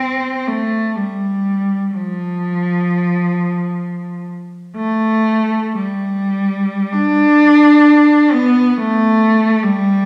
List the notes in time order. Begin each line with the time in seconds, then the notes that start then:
Already playing: C4
0.47 A3
0.96 G3
1.95 F3
4.76 A3
5.78 G3
6.92 D4
8.33 B3
8.77 A3
9.64 G3